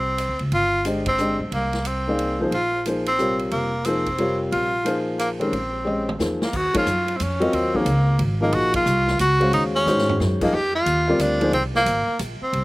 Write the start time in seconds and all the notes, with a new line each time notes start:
Already playing: C2 C4
0.18 hi-hat pedal, ride
0.29 D2
0.39 C#2, ride
0.52 G1 F4, ride
0.85 G#3 D4 G4 C5 D#5, hi-hat pedal, ride
1.06 C4, kick, ride
1.18 G#3 D4 G4 C5 D#5, hi-hat pedal
1.40 B1
1.52 C2 A#3, ride
1.73 snare, ride
1.85 C4, hi-hat pedal, ride
2.08 A#3 D#4 G#4 D5 F5
2.19 ride
2.40 F3 A#3 D#4 G#4 C5
2.51 A#1 F4, ride
2.86 F3 A#3 D#4 G#4 C5, hi-hat pedal, ride
3.06 C4, ride
3.18 C3 G3 F4 A#4 C#5, hi-hat pedal
3.39 ride
3.51 F1 A#3, ride
3.85 F3 A#3 C4 D#4 G#4 C5, hi-hat pedal, ride
4.06 kick, ride
4.18 C3 G3 F4 A#4 C#5, ride
4.52 A#1 F4, ride
4.84 F3 A#3 D#4 G#4 C5, hi-hat pedal, ride
5.19 A#3, hi-hat pedal, ride
5.39 D#3 G#3 C4 C#4 G4 A#4, ride
5.52 A#1, ride
5.85 G#3 C#4 G4 C5 D#5, mid tom
6.09 mid tom
6.19 E2 F3 A#3 D#4 G#4 C5, snare, hi-hat pedal
6.42 A#3, snare
6.53 D#2 F#4, kick, crash
6.74 F3 A#3 D#4 G#4 C#5, muted upright bass stroke, kick, ride
6.78 F4
6.86 F#2, hi-hat pedal
7.08 ride
7.17 F2 C4, hi-hat pedal, ride
7.23 C#4
7.40 F#3 C4 F4 A#4 D#5, ride
7.53 D#2 C4, ride
7.74 F3 A#3 D#4 G#4 C#5, kick
7.85 C#2, hi-hat pedal, ride
8.19 G#1, ride
8.41 F3 A#3 D#4 G#4 D#5
8.52 A#1 F#4, ride
8.74 F4, kick, ride
8.86 C2, hi-hat pedal
9.07 snare
9.19 C#2 F#4, hi-hat pedal, ride
9.40 G#3 C#4 F#4 C5 F5, ride
9.53 D#2 D#4, ride
9.75 C#4, snare
9.86 G#2 D#3 G#3 C#4 F#4 C5, snare, hi-hat pedal
9.98 snare
10.09 floor tom
10.20 F#2, snare
10.41 F3 A#3 D#4 G#4 D#5, kick, crash
10.53 F2 G4
10.75 F4
10.86 D#2, hi-hat pedal, ride
11.08 G3 C4 F4 A#4 D5
11.19 D2 D4, hi-hat pedal, ride
11.40 F3 A#3 D#4 G#4 C5, ride
11.52 C2 C4, ride
11.75 A#3, snare
11.86 G#1, hi-hat pedal, ride
12.07 muted upright bass stroke
12.19 A#1, hi-hat pedal, ride
12.41 C4, muted upright bass stroke
12.53 C2, ride